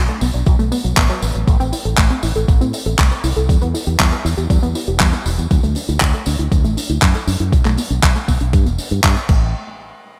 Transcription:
0.08 A3, closed hi-hat
0.21 B1 B3, open hi-hat, tambourine
0.33 B1 D4, closed hi-hat, tambourine
0.46 B1 F#3, kick, closed hi-hat, tambourine
0.59 B1 A3, closed hi-hat, tambourine
0.72 B3, open hi-hat, tambourine
0.84 B1 F#3, closed hi-hat, tambourine
0.96 A1 B3, kick, clap, closed hi-hat
1.09 F#3, closed hi-hat, tambourine
1.22 A1 B3, open hi-hat, tambourine
1.35 A1 F#3, closed hi-hat, tambourine
1.47 A1 A3, kick, closed hi-hat, tambourine
1.60 A1 C4, closed hi-hat, tambourine
1.72 E4, open hi-hat, tambourine
1.85 A1 A4, closed hi-hat, tambourine
1.98 A1 A3, kick, clap, closed hi-hat, tambourine
2.10 C4, closed hi-hat
2.23 A1 E4, open hi-hat, tambourine
2.35 A1 A4, closed hi-hat, tambourine
2.48 A1 A3, kick, closed hi-hat, tambourine
2.61 A2 C4, closed hi-hat, tambourine
2.73 E4, open hi-hat, tambourine
2.86 A1 A4, closed hi-hat, tambourine
2.99 C2 A3, kick, clap, closed hi-hat, tambourine
3.11 C4, closed hi-hat, tambourine
3.24 C2 E4, open hi-hat, tambourine
3.36 C2 A4, closed hi-hat, tambourine
3.49 E2 G3, kick, closed hi-hat, tambourine
3.61 E2 B3, closed hi-hat, tambourine
3.74 E4, open hi-hat, tambourine
3.86 E2 G4, closed hi-hat, tambourine
3.99 E2 G3, kick, clap, tambourine
4.12 B3, closed hi-hat
4.25 E2 E4, open hi-hat, tambourine
4.37 E2 G4, closed hi-hat, tambourine
4.50 E2 G3, kick, closed hi-hat, tambourine
4.63 E2 B3, closed hi-hat, tambourine
4.75 E4, open hi-hat, tambourine
4.87 E1 G4, closed hi-hat, tambourine
5.00 E2 G3, kick, clap, closed hi-hat, tambourine
5.13 B3, closed hi-hat, tambourine
5.25 E1 E4, open hi-hat, tambourine
5.38 E2 G4, closed hi-hat, tambourine
5.50 D2 F#3, kick, closed hi-hat, tambourine
5.63 D2 A3, closed hi-hat, tambourine
5.75 D4, open hi-hat, tambourine
5.89 D2 E4, closed hi-hat, tambourine
6.00 D2 F#3, kick, clap, closed hi-hat
6.14 A3, closed hi-hat
6.26 D2 D4, open hi-hat, tambourine
6.39 D2 E4, closed hi-hat, tambourine
6.52 D2 F#3, kick, closed hi-hat, tambourine
6.64 A1 A3, closed hi-hat, tambourine
6.77 D4, open hi-hat, tambourine
6.89 D2 E4, closed hi-hat, tambourine
7.02 F#2 F#3, kick, clap, closed hi-hat, tambourine
7.14 A3, closed hi-hat, tambourine
7.27 F#2 D4, open hi-hat, tambourine
7.39 F#2 E4, closed hi-hat, tambourine
7.52 B1 F#3, kick, closed hi-hat, tambourine
7.65 B1 A3, clap, closed hi-hat, tambourine
7.77 B3, open hi-hat, tambourine
7.90 B1 D4, closed hi-hat, tambourine
8.03 B1 F#3, kick, clap, closed hi-hat, tambourine
8.16 A3, closed hi-hat, tambourine
8.28 B1 B3, kick, open hi-hat, tambourine
8.40 B1 D4, closed hi-hat, tambourine
8.53 G2 G3, kick, closed hi-hat, tambourine
8.66 E1 B3, closed hi-hat, tambourine
8.78 D4, open hi-hat, tambourine
8.91 G2 E4, closed hi-hat, tambourine
9.04 G2 G3, kick, clap, closed hi-hat
9.16 B3, closed hi-hat, tambourine
9.29 A1 A3, kick, crash

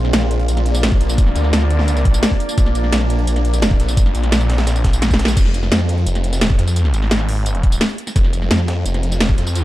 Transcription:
Already playing: A#1 A#3 D4 F4 D5
0.05 snare
0.13 A#1, snare, closed hi-hat, tambourine
0.22 snare
0.31 closed hi-hat
0.40 closed hi-hat
0.48 A#1, closed hi-hat, tambourine
0.57 snare, closed hi-hat
0.66 closed hi-hat
0.75 snare, closed hi-hat, tambourine
0.83 snare, closed hi-hat, tambourine
0.92 kick
1.01 A#1, snare, closed hi-hat
1.09 snare, tambourine
1.18 kick, closed hi-hat, tambourine
1.27 snare
1.36 D2, closed hi-hat, tambourine
1.44 snare
1.53 snare, closed hi-hat, tambourine
1.62 snare
1.70 closed hi-hat
1.79 snare
1.88 closed hi-hat, tambourine
1.97 snare, closed hi-hat, tambourine
2.05 kick, closed hi-hat
2.14 closed hi-hat, tambourine
2.23 snare, closed hi-hat, tambourine
2.31 kick, snare
2.40 closed hi-hat
2.49 tambourine
2.58 A#1, kick, closed hi-hat, tambourine
2.66 snare
2.75 closed hi-hat, tambourine
2.84 snare
2.92 A#1, snare, closed hi-hat, tambourine
3.01 snare
3.10 closed hi-hat
3.19 closed hi-hat
3.27 A#1, closed hi-hat, tambourine
3.36 snare, closed hi-hat
3.45 closed hi-hat
3.54 snare, closed hi-hat, tambourine
3.62 snare, closed hi-hat, tambourine
3.71 kick
3.80 A#1, snare, closed hi-hat
3.88 snare, tambourine
3.97 kick, closed hi-hat, tambourine
4.06 snare
4.15 A#1, closed hi-hat, tambourine
4.23 snare, closed hi-hat
4.32 snare, closed hi-hat, tambourine
4.41 snare, tambourine
4.49 snare, closed hi-hat
4.58 snare, closed hi-hat
4.67 snare, closed hi-hat, tambourine
4.76 snare, closed hi-hat, tambourine
4.84 kick, snare, closed hi-hat
4.93 snare, closed hi-hat, tambourine
5.02 snare, closed hi-hat, tambourine
5.11 kick, snare, closed hi-hat, tambourine
5.19 snare, closed hi-hat
5.25 snare
5.28 snare, closed hi-hat, tambourine
5.37 F1, kick, closed hi-hat, crash, tambourine
5.46 snare
5.54 closed hi-hat, tambourine
5.63 snare
5.72 F2, snare, closed hi-hat, tambourine
5.80 snare
5.89 closed hi-hat
5.98 closed hi-hat
6.06 F1, closed hi-hat, tambourine
6.15 snare, closed hi-hat
6.24 closed hi-hat
6.33 snare, closed hi-hat, tambourine
6.41 snare, closed hi-hat, tambourine
6.50 kick
6.59 F2, snare, closed hi-hat
6.67 snare, tambourine
6.76 closed hi-hat, tambourine
6.85 snare
6.94 G#1, closed hi-hat, tambourine
7.02 snare
7.11 snare, closed hi-hat, tambourine
7.20 snare
7.29 closed hi-hat, open hi-hat
7.46 closed hi-hat, tambourine
7.55 closed hi-hat
7.63 kick, closed hi-hat
7.72 closed hi-hat, tambourine
7.81 snare, closed hi-hat, tambourine
7.90 closed hi-hat
7.98 closed hi-hat
8.07 snare, tambourine
8.16 F1, kick, closed hi-hat, tambourine
8.25 snare
8.33 closed hi-hat, tambourine
8.42 snare
8.51 F2, snare, closed hi-hat, tambourine
8.59 snare
8.68 snare, closed hi-hat
8.86 F1, closed hi-hat, tambourine
8.94 snare, closed hi-hat
9.03 closed hi-hat
9.12 snare, closed hi-hat, tambourine
9.20 snare, closed hi-hat, tambourine
9.29 kick
9.38 F2, snare, closed hi-hat
9.47 snare, tambourine
9.55 closed hi-hat, tambourine

